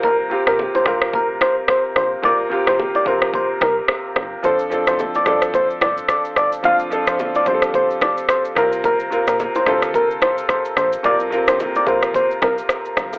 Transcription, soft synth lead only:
X:1
M:4/4
L:1/16
Q:"Swing 16ths" 1/4=109
K:Cmix
V:1 name="Soft synth lead"
B z2 B z c c z B z c z c z c z | d z2 c z d c z c z B z4 z | c z2 c z d d z c z d z d z d z | f z2 c z d c z c z d z c z B z |
B z2 B z c c z B z c z c z c z | d z2 c z d c z c z B z4 z |]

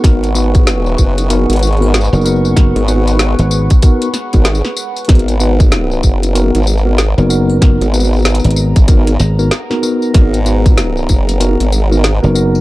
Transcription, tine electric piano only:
X:1
M:4/4
L:1/16
Q:"Swing 16ths" 1/4=95
K:G#m
V:1 name="Tine electric piano"
[B,DFA] z [B,DFB]6 [B,DFA] z2 [B,DFA] z [B,DFA] [B,DFA]2 | [B,DFA] z [B,DFB]6 [B,DFA] z2 [B,DFA] z4 | [B,DFA] z [B,DFB]6 [B,DFA] z2 [B,DFA] z [B,DFA] [B,DFA]2 | [B,DFA] z [B,DFB]6 [B,DFA] z2 [B,DFA] z [B,DFA] [B,DFA]2 |
[B,DFA] z [B,DFB]6 [B,DFA] z2 [B,DFA] z [B,DFA] [B,DFA]2 |]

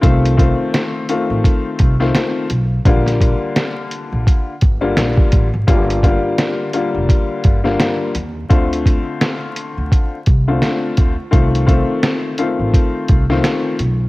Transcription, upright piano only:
X:1
M:4/4
L:1/16
Q:"Swing 16ths" 1/4=85
K:Fmix
V:1 name="Upright piano"
[E,A,CF]2 [E,A,CF]4 [E,A,CF]4- [E,A,CF] [E,A,CF]3 z2 | [D,G,B,F]8- [D,G,B,F] z2 [D,G,B,F]4 z | [D,G,B,F]2 [D,G,B,F]4 [D,G,B,F]4- [D,G,B,F] [D,G,B,F]3 z2 | [D,A,CF]8- [D,A,CF] z2 [D,A,CF]4 z |
[E,A,CF]2 [E,A,CF]4 [E,A,CF]4- [E,A,CF] [E,A,CF]3 z2 |]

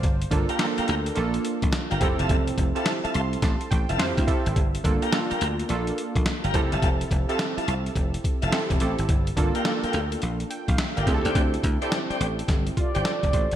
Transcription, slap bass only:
X:1
M:4/4
L:1/16
Q:"Swing 16ths" 1/4=106
K:Gdor
V:1 name="Slap bass" clef=bass
G,,,2 G,,, z3 D,,2 B,,,2 z B,,, z G,,, F,,, ^F,,, | F,,,2 F,,, z3 C,,2 A,,, z A,,, F,,, F,, D,, z _A,,, | G,,,2 G,,, z3 D,,2 B,,,2 z B,,, z G,,, F,,, ^F,,, | F,,,2 F,,, z3 C,,2 F,,,2 z F,,, z E,,, A,,, _A,,, |
G,,,2 G,,, z3 D,,2 B,,,2 z B,,, z G,,, D,, _E,, | D,,2 D,, z3 A,,,2 G,,,2 z G,,, z F,,, A,,, _A,,, |]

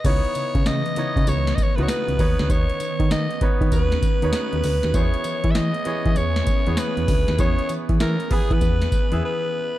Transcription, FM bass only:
X:1
M:4/4
L:1/16
Q:"Swing 16ths" 1/4=98
K:Elyd
V:1 name="FM bass" clef=bass
C,, z C, C, C, z C, C, C,,2 z C,, z C,, D,, =D,, | D,, z D, D, D, z D, D, D,,2 z D,, z D,, =D,, ^D,, | E,, z E, E, E, z E, E, E,,2 z E,, z E,, =D,, ^D,, | E,, z E, E, E, z E, E, E,,2 z E,, z4 |]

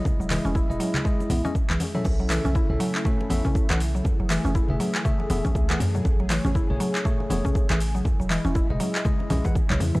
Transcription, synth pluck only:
X:1
M:4/4
L:1/16
Q:"Swing 16ths" 1/4=120
K:F#dor
V:1 name="Synth pluck" clef=bass
z F, E, C E z F, z G, z B, C z E, z F, | z F, E, C E z F, z A, z B, C z E, z F, | z F, E, C E z F, z A, z B, C z E, z F, | z F, E, C E z F, z A, z B, C z E, z F, |
z F, E, C E z F, z G, z C E, z F, C, E, |]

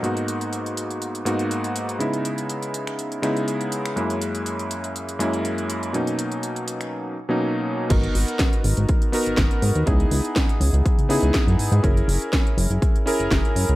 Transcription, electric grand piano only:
X:1
M:4/4
L:1/16
Q:"Swing 16ths" 1/4=122
K:G#m
V:1 name="Electric grand piano"
[G,,A,B,DF]8- [G,,A,B,DF]2 [G,,A,B,DF]6 | [C,G,B,DE]8- [C,G,B,DE]2 [C,G,B,DE]6 | [F,,G,A,CE]8- [F,,G,A,CE]2 [F,,G,A,CE]6 | [B,,F,A,CD]8- [B,,F,A,CD]2 z [B,,F,A,CD]4- [B,,F,A,CD] |
[B,DFA]8- [B,DFA]2 [B,DFA]6 | [B,DEG]8- [B,DEG]2 [B,DEG]6 | [CEGA]8- [CEGA]2 [CEGA]6 |]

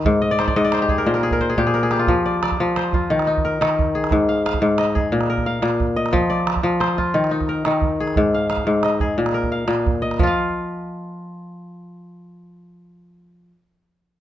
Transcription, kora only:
X:1
M:12/8
L:1/16
Q:3/8=118
K:Eb
V:1 name="Kora"
z2 e d c d e d c G A B c B A B c A G A B A G F- | F z d2 d4 c2 F4 E2 B6 A2- | A2 f2 f4 e2 A4 B2 f6 e2- | e2 d6 c2 F4 E2 B6 A2- |
A2 f2 f4 e2 A4 B2 f6 e2- | e2 z16 z6 | z24 |]
V:2 name="Kora" clef=bass
A,,4 z2 A,,4 z2 B,,4 z2 B,,4 z2 | F,4 z2 F,4 z2 E,4 z2 E,4 z2 | A,,4 z2 A,,4 z2 B,,4 z2 B,,4 z2 | F,4 z2 F,4 z2 E,4 z2 E,4 z2 |
A,,4 z2 A,,4 z2 B,,4 z2 B,,4 z2 | [F,Ff]24- | [F,Ff]24 |]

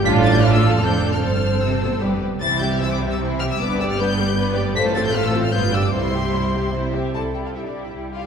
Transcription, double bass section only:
X:1
M:3/4
L:1/8
Q:1/4=152
K:C
V:1 name="Double bass section" clef=bass
A,,,4 F,,,2 | G,,,4 G,,, z | C,,6 | G,,,6 |
A,,,4 G,,,2 | C,,4- C,, z | C,,2 C,,2 C,,2 |]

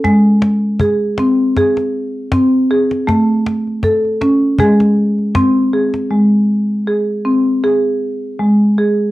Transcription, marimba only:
X:1
M:4/4
L:1/8
Q:"Swing 16ths" 1/4=79
K:none
V:1 name="Marimba"
^G,2 ^G ^B, G2 B, G | z2 A ^C ^G2 ^B, G | z2 ^G ^B, G2 ^G, G |]
V:2 name="Marimba" clef=bass
z8 | A,4 ^G,4 | ^G,8 |]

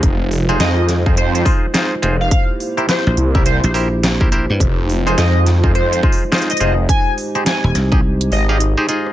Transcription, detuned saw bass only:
X:1
M:4/4
L:1/8
Q:"Swing 16ths" 1/4=105
K:Fm
V:1 name="Detuned saw bass" clef=bass
F,,,2 F,,3 z2 F,,, | z3 C,, z4 | F,,,2 F,,3 z2 F,,, | z4 z A,,, z2 |]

